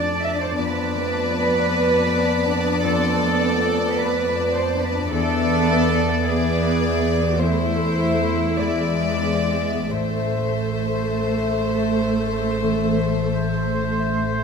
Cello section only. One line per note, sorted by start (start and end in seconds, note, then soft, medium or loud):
0.00 0.24 D5 loud
0.24 0.32 E5 medium
0.33 0.41 D5 medium
0.41 0.49 C5 medium
0.50 0.58 D5 medium
0.58 2.84 B4 loud
2.84 3.96 A4 medium
3.99 4.55 B4 medium
4.56 4.84 C5 medium
4.85 5.13 B4 medium
5.13 6.23 A4 medium
6.26 7.39 G#4 medium
7.41 9.24 E4 medium
9.23 9.32 B3 medium
9.33 9.42 C4 medium
9.42 9.51 B3 medium
9.51 9.60 C4 soft
9.61 9.92 B3 medium
9.91 14.44 A3 medium